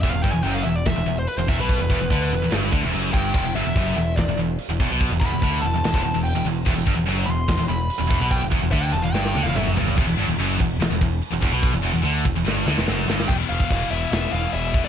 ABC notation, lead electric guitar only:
X:1
M:4/4
L:1/16
Q:1/4=145
K:Em
V:1 name="Lead electric guitar"
e =f g ^g =g f e d e3 c B c e B- | B8- B z4 z g2- | g2 e6 d2 z6 | z2 b4 a6 g2 z2 |
z6 c'4 b6 | g2 z2 e g a =f g3 f e2 z2 | z16 | z16 |
g2 =f4 e2 e2 f2 e3 d |]